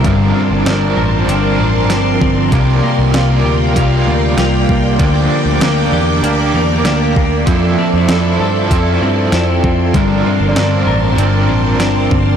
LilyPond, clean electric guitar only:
\new Staff \with { instrumentName = "Clean electric guitar" } { \time 4/4 \key g \dorian \tempo 4 = 97 g,8 c'8 d'8 bes'8 d'8 c'8 d'8 c'8 | c8 bes8 f'8 g'8 f'8 bes8 f'8 bes8 | d8 bes8 d'8 g'8 d'8 bes8 d'8 bes8 | f8 c'8 e'8 a'8 e'8 c'8 e'8 c'8 |
g,8 c'8 d'8 bes'8 d'8 c'8 d'8 c'8 | }